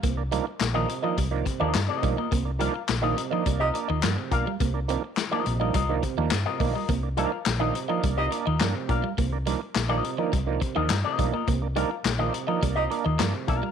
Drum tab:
HH |xxxxxxxx|xxxxxxxx|xxxxxxxo|xxxxxxxx|
CP |--x---x-|--x---x-|--x---x-|--x---x-|
SD |--o---o-|--o---o-|--o---o-|--o---o-|
BD |o---oo-o|o---o--o|o---oo-o|o---o--o|

HH |xxxxxxxx|xxxxxxxx|
CP |--x---x-|--x---x-|
SD |--o---o-|--o---o-|
BD |o---oo-o|o---o--o|